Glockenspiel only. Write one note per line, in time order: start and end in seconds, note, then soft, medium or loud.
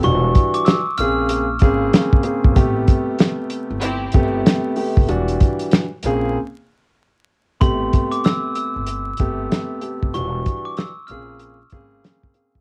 0.04 0.52 C#6 loud
0.54 0.65 D6 medium
0.65 0.94 E6 medium
0.98 1.89 F6 medium
7.61 8.09 C6 loud
8.11 8.23 D6 medium
8.25 8.53 E6 medium
8.56 10.10 E6 medium
10.14 10.62 C#6 loud
10.65 10.76 D6 medium
10.78 11.06 E6 medium
11.07 11.99 F6 medium